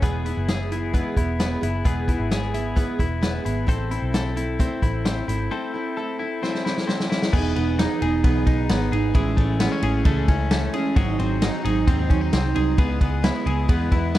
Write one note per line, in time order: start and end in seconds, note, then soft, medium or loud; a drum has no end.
0.00 0.32 E1 medium
0.00 1.71 E3 medium
0.00 0.25 E3 medium
0.00 0.25 G#3 medium
0.00 0.25 B3 medium
0.00 0.24 E4 medium
0.00 0.23 G#4 medium
0.00 kick medium
0.00 closed hi-hat medium
0.24 0.48 B3 soft
0.24 0.48 E4 soft
0.24 0.48 G#4 soft
0.24 closed hi-hat medium
0.37 1.02 F#1 medium
0.48 0.71 G#3 medium
0.48 0.71 B3 medium
0.48 0.70 E4 medium
0.48 0.69 G#4 medium
0.48 snare loud
0.48 closed hi-hat medium
0.70 0.92 B3 soft
0.70 0.93 E4 medium
0.70 0.93 G#4 medium
0.70 closed hi-hat medium
0.93 1.16 E3 medium
0.93 1.16 G#3 medium
0.93 1.17 B3 medium
0.93 1.16 E4 medium
0.93 1.15 G#4 medium
0.93 kick medium
0.93 closed hi-hat medium
1.16 1.55 E1 medium
1.16 1.38 B3 soft
1.16 1.39 E4 soft
1.16 1.39 G#4 soft
1.16 kick medium
1.16 closed hi-hat medium
1.39 1.62 G#3 medium
1.39 1.61 B3 medium
1.39 1.60 E4 medium
1.39 1.59 G#4 medium
1.39 snare loud
1.39 closed hi-hat medium
1.61 1.82 F#1 medium
1.61 1.84 B3 soft
1.61 1.84 E4 soft
1.61 1.84 G#4 medium
1.61 closed hi-hat medium
1.84 2.14 E1 medium
1.84 2.08 E3 medium
1.84 2.08 G#3 medium
1.84 2.08 B3 medium
1.84 2.08 E4 medium
1.84 2.07 G#4 medium
1.84 kick medium
1.84 closed hi-hat medium
2.08 2.30 B3 soft
2.08 2.31 E4 soft
2.08 2.31 G#4 medium
2.08 kick medium
2.08 closed hi-hat medium
2.20 2.85 G#1 medium
2.30 2.53 G#3 medium
2.30 2.54 B3 medium
2.30 2.53 E4 medium
2.30 2.53 G#4 medium
2.30 snare loud
2.30 closed hi-hat medium
2.54 2.75 B3 soft
2.54 2.76 E4 soft
2.54 2.76 G#4 soft
2.54 closed hi-hat medium
2.76 2.99 E3 medium
2.76 2.99 G#3 medium
2.76 2.99 B3 medium
2.76 2.98 E4 medium
2.76 2.97 G#4 medium
2.76 kick medium
2.76 closed hi-hat medium
2.98 3.38 E1 medium
2.98 3.21 B3 soft
2.98 3.22 E4 soft
2.98 3.22 G#4 medium
2.98 kick medium
2.98 closed hi-hat medium
3.21 3.45 G#3 medium
3.21 3.44 B3 medium
3.21 3.43 E4 medium
3.21 3.42 G#4 medium
3.21 snare loud
3.21 closed hi-hat medium
3.44 3.65 G#1 medium
3.44 3.66 B3 soft
3.44 3.66 E4 medium
3.44 3.67 G#4 medium
3.44 closed hi-hat medium
3.66 3.97 A1 medium
3.66 3.90 A3 medium
3.66 3.90 C4 medium
3.66 3.89 E4 medium
3.66 3.88 A4 medium
3.66 kick medium
3.66 closed hi-hat medium
3.89 4.12 C4 soft
3.89 4.13 E4 soft
3.89 4.13 A4 medium
3.89 closed hi-hat medium
4.02 4.67 B1 medium
4.13 4.36 A3 medium
4.13 4.36 C4 medium
4.13 4.35 E4 medium
4.13 4.34 A4 medium
4.13 snare loud
4.13 closed hi-hat medium
4.35 4.58 C4 soft
4.35 4.59 E4 soft
4.35 4.59 A4 medium
4.35 closed hi-hat medium
4.59 4.82 A3 medium
4.59 4.82 C4 medium
4.59 4.82 E4 medium
4.59 4.81 A4 medium
4.59 kick medium
4.59 closed hi-hat medium
4.82 5.21 A1 medium
4.82 5.05 C4 soft
4.82 5.05 E4 soft
4.82 5.05 A4 medium
4.82 kick medium
4.82 closed hi-hat medium
5.05 5.28 A3 medium
5.05 5.28 C4 medium
5.05 5.28 E4 medium
5.05 5.27 A4 medium
5.05 snare loud
5.05 closed hi-hat medium
5.28 5.47 G#1 medium
5.28 5.51 C4 soft
5.28 5.51 E4 medium
5.28 5.51 A4 medium
5.28 closed hi-hat medium
5.51 5.74 A3 medium
5.51 5.74 C4 medium
5.51 5.74 E4 medium
5.51 5.73 A4 medium
5.74 5.97 C4 soft
5.74 5.97 E4 soft
5.74 5.97 A4 medium
5.97 6.20 A3 medium
5.97 6.20 C4 medium
5.97 6.20 E4 medium
5.97 6.19 A4 medium
6.20 6.42 C4 soft
6.20 6.43 E4 soft
6.20 6.43 A4 medium
6.43 6.65 A3 medium
6.43 6.66 C4 medium
6.43 6.65 E4 medium
6.43 6.64 A4 medium
6.43 snare medium
6.55 snare soft
6.65 6.87 C4 soft
6.65 6.88 E4 soft
6.65 6.88 A4 soft
6.65 snare medium
6.77 snare medium
6.88 7.11 A3 medium
6.88 7.11 C4 medium
6.88 7.11 E4 medium
6.88 7.10 A4 medium
6.88 snare medium
7.00 snare medium
7.11 7.34 C4 soft
7.11 7.34 E4 soft
7.11 7.33 A4 medium
7.11 snare medium
7.22 snare medium
7.33 7.53 E1 loud
7.33 7.56 E3 medium
7.33 7.56 B3 medium
7.33 7.57 D#4 loud
7.33 7.55 G#4 loud
7.33 kick loud
7.33 crash loud
7.56 7.85 E1 loud
7.56 7.79 B3 soft
7.56 7.79 D#4 medium
7.56 7.79 G#4 medium
7.56 ride medium
7.79 8.02 E3 medium
7.79 8.02 B3 medium
7.79 8.02 D#4 medium
7.79 8.00 G#4 medium
7.79 snare loud
7.79 ride medium
8.01 8.21 E1 loud
8.01 8.24 B3 soft
8.01 8.24 D#4 medium
8.01 8.24 G#4 medium
8.01 ride medium
8.24 8.44 B1 medium
8.24 8.47 E3 loud
8.24 8.47 B3 medium
8.24 8.47 D#4 loud
8.24 8.45 G#4 loud
8.24 kick loud
8.24 ride medium
8.47 8.66 B1 loud
8.47 8.68 B3 medium
8.47 8.69 D#4 medium
8.47 8.69 G#4 medium
8.47 kick medium
8.47 ride medium
8.69 8.89 G#1 medium
8.69 8.92 E3 medium
8.69 8.92 B3 medium
8.69 8.91 D#4 medium
8.69 8.90 G#4 medium
8.69 snare loud
8.69 ride medium
8.91 9.12 G#1 medium
8.91 9.14 B3 medium
8.91 9.14 D#4 medium
8.91 9.14 G#4 medium
8.91 ride medium
9.14 9.34 A1 loud
9.14 9.37 A2 medium
9.14 9.38 E3 medium
9.14 9.37 G#3 loud
9.14 9.37 C#4 medium
9.14 9.35 E4 medium
9.14 9.83 G#4 medium
9.14 kick loud
9.14 ride medium
9.36 9.67 A1 loud
9.36 9.59 G#3 soft
9.36 10.05 A3 medium
9.36 9.60 C#4 medium
9.36 9.60 E4 medium
9.36 kick medium
9.36 ride medium
9.60 9.83 E3 medium
9.60 9.83 G#3 medium
9.60 9.72 B3 medium
9.60 9.83 C#4 medium
9.60 9.82 E4 medium
9.60 snare loud
9.60 ride medium
9.72 10.27 C#4 medium
9.82 10.02 A1 loud
9.82 10.04 G#3 medium
9.82 10.05 C#4 medium
9.82 10.05 E4 medium
9.82 10.73 G#4 medium
9.82 ride medium
10.05 10.25 C#2 loud
10.05 10.28 A2 medium
10.05 10.28 E3 medium
10.05 10.28 G#3 loud
10.05 10.50 A3 medium
10.05 10.28 C#4 loud
10.05 10.27 E4 loud
10.05 kick loud
10.05 ride medium
10.28 10.67 C#2 medium
10.28 10.50 G#3 soft
10.28 10.51 C#4 medium
10.28 10.51 E4 medium
10.28 kick medium
10.28 ride medium
10.51 10.74 E3 medium
10.51 10.74 G#3 medium
10.51 11.01 A3 medium
10.51 10.74 C#4 medium
10.51 10.72 E4 medium
10.51 snare loud
10.51 ride medium
10.73 10.97 G#3 medium
10.73 10.97 C#4 medium
10.73 10.97 E4 medium
10.73 10.96 G#4 medium
10.73 ride medium
10.96 11.16 G#1 loud
10.96 11.19 G#2 medium
10.96 11.20 D#3 loud
10.96 11.20 F#3 loud
10.96 11.19 C4 medium
10.96 11.18 D#4 loud
10.96 11.64 G#4 medium
10.96 kick loud
10.96 ride medium
11.19 11.48 G#1 loud
11.19 11.42 F#3 medium
11.19 11.42 C4 medium
11.19 11.42 D#4 medium
11.19 ride medium
11.42 11.65 D#3 medium
11.42 11.65 F#3 medium
11.42 11.64 C4 medium
11.42 11.63 D#4 medium
11.42 snare loud
11.42 ride medium
11.64 11.84 G#1 loud
11.64 11.87 F#3 medium
11.64 11.88 C4 medium
11.64 11.87 D#4 medium
11.64 12.55 G#4 medium
11.64 ride medium
11.88 12.07 D#2 loud
11.88 12.10 G#2 loud
11.88 12.10 D#3 loud
11.88 12.11 F#3 loud
11.88 12.10 C4 loud
11.88 12.09 D#4 loud
11.88 kick loud
11.88 ride medium
12.10 12.30 D#2 medium
12.10 12.32 F#3 medium
12.10 12.32 C4 medium
12.10 12.21 C#4 medium
12.10 12.33 D#4 medium
12.10 kick loud
12.10 ride medium
12.21 12.83 D#4 medium
12.32 12.52 C2 loud
12.32 12.55 D#3 medium
12.32 12.55 F#3 medium
12.32 12.54 C4 medium
12.32 12.53 D#4 medium
12.32 snare loud
12.32 ride medium
12.54 12.75 C2 medium
12.54 12.78 F#3 medium
12.54 12.78 C4 medium
12.54 12.78 D#4 medium
12.54 12.79 G#4 medium
12.54 ride medium
12.77 12.98 C#2 loud
12.77 13.00 C#3 medium
12.77 13.01 G#3 medium
12.77 13.00 B3 loud
12.77 12.98 E4 loud
12.77 13.46 G#4 medium
12.77 kick loud
12.77 ride medium
13.00 13.30 C#2 loud
13.00 13.22 G#3 medium
13.00 13.23 B3 medium
13.00 13.23 E4 medium
13.00 kick medium
13.00 ride medium
13.22 13.46 C#3 medium
13.22 13.46 G#3 medium
13.22 13.45 B3 medium
13.22 13.44 E4 medium
13.22 snare loud
13.22 ride medium
13.45 13.65 C#2 loud
13.45 13.68 G#3 medium
13.45 13.68 B3 medium
13.45 13.68 E4 medium
13.45 14.18 G#4 medium
13.45 ride medium
13.68 13.88 E2 loud
13.68 13.91 C#3 medium
13.68 13.92 G#3 medium
13.68 13.91 B3 loud
13.68 13.90 E4 loud
13.68 kick loud
13.68 ride medium
13.92 14.18 E2 medium
13.92 14.14 G#3 medium
13.92 14.14 B3 medium
13.92 14.14 E4 medium
13.92 kick medium
13.92 ride medium
14.14 14.18 C#3 medium
14.14 14.18 G#3 medium
14.14 14.18 B3 medium
14.14 snare loud
14.14 ride medium